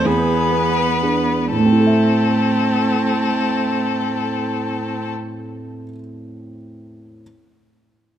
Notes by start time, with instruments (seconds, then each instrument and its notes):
0.05 grand piano E2, cello B3, viola G#4, violin B4
0.51 grand piano B3
1.02 grand piano D4 G#4
1.52 grand piano A2, cello A3, viola C4, violin A4
1.59 grand piano A3
1.66 grand piano C4
1.73 grand piano E4
1.80 grand piano A4
1.87 grand piano E5